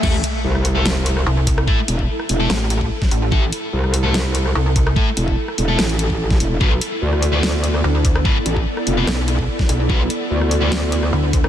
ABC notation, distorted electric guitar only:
X:1
M:4/4
L:1/16
Q:1/4=146
K:Am
V:1 name="Distorted electric guitar"
[A,EA] z6 [A,EA] z8 | [A,EA] z6 [A,EA] z8 | [A,EA] z6 [A,EA] z8 | [A,EA] z6 [A,EA] z8 |
[B,FB] z6 [B,FB] z8 | [B,FB] z6 [B,FB] z8 | [B,FB] z6 [B,FB] z8 |]